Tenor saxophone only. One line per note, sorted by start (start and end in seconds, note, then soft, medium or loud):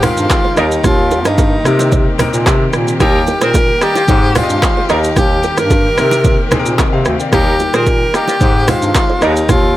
0.04 0.60 F4 loud
0.59 0.85 D#4 medium
0.85 1.23 F4 loud
1.27 2.30 D#4 medium
3.02 3.44 G4 loud
3.43 3.84 A#4 loud
3.83 4.38 G4 loud
4.37 4.92 F4 loud
4.90 5.17 D#4 medium
5.18 5.60 G4 loud
5.59 6.66 A#4 loud
7.34 7.77 G4 loud
7.75 8.17 A#4 loud
8.15 8.71 G4 loud
8.69 9.25 F4 loud
9.23 9.50 D#4 medium
9.50 9.77 F4 loud